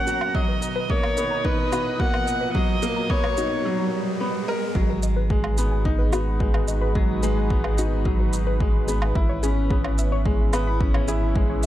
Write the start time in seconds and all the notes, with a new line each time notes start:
Already playing: F#3 A#3 C#4 F#4 F#5 A#5, riser
0.07 F#4, shaker
0.21 low woodblock
0.35 B2 F#3 F#4 D#5, kick
0.48 B4
0.62 D#5, shaker
0.76 B4
0.83 D#5
0.90 A#3 C#5, kick
1.03 low woodblock
1.17 B3 A#4, shaker
1.31 A#5
1.45 D#4 B4, kick
1.58 B4
1.72 B3 F#4, low woodblock, shaker
2.00 A#3 F#4 F#5, kick
2.14 B4, low woodblock
2.27 D#5, shaker
2.41 B4
2.55 F#3 D#5, kick
2.82 A#3 A#4, shaker
2.96 A#5
3.10 B3 C#5, kick
3.24 B4, low woodblock
3.37 D#4 F#4, shaker
3.65 F#3
4.20 B3
4.48 A#4
4.75 G#1 F#3 G#3 F#4, kick
4.89 B4
4.98 D#4 B4
5.03 D#5, shaker
5.16 F#4 B4
5.30 G#3, kick
5.44 low woodblock
5.58 B3 G#4, shaker
5.72 G#5
5.85 D#4, kick
5.99 B4
6.13 B3 F#4, low woodblock, shaker
6.40 G#3 F#4, kick
6.54 B4, low woodblock
6.68 D#5, shaker
6.81 B4
6.95 F#3, kick
7.23 G#3 G#4, shaker
7.37 G#5
7.50 B3, kick
7.64 B4, low woodblock
7.78 D#4 F#4, shaker
8.05 F#3 F#4, kick
8.20 B4
8.33 D#5, shaker
8.47 B4
8.60 G#3, kick
8.88 B3 G#4, shaker
9.02 G#5, low woodblock
9.15 G#1 C#4 E4, kick
9.29 E4 C#5
9.43 C#4 G#4, shaker
9.71 B3 G#4, kick
9.84 C#5, low woodblock
9.98 E5, shaker
10.12 C#5
10.26 G#3, kick
10.53 B3 B4, low woodblock, shaker
10.67 B5
10.81 C#4, kick
10.94 C#5, low woodblock
11.08 E4 G#4, shaker
11.36 G#3 G#4, kick
11.50 C#5